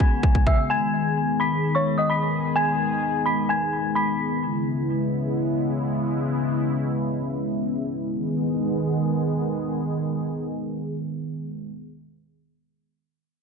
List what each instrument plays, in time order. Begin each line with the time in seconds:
Already playing: analog synth pad C#3 G#3 B3 F#4, synth bell G#5 G#6
0.00 kick
0.23 kick
0.35 kick
0.47 synth bell E5 E6, kick
0.70 analog synth pad D#3 G#4, synth bell G#5 G#6
1.40 synth bell B5 B6
1.75 synth bell C#5 C#6
1.98 synth bell D#5 D#6
2.10 synth bell B5 B6
2.56 synth bell G#5 G#6
3.26 synth bell B5 B6
3.49 synth bell G#5 G#6
3.95 synth bell B5 B6
4.42 analog synth pad C#3 G#3 B3 E4
8.14 analog synth pad D#3 G#3 B3 G#4